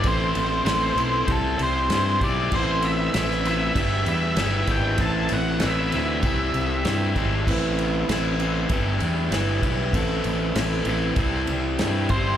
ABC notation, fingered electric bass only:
X:1
M:4/4
L:1/8
Q:1/4=97
K:Am
V:1 name="Fingered electric bass" clef=bass
A,,, A,,, A,,, B,,, C,, C,, G,, B,,, | A,,,2 A,,,2 G,,, E,, G,,, ^G,,, | A,,, A,,, A,,, D,, C,, C,, G,, ^G,,, | A,,,2 A,,,2 G,,, E,, G,,, B,,, |
A,,, A,,, A,,, A,,, C,, C,, G,, G,,, |]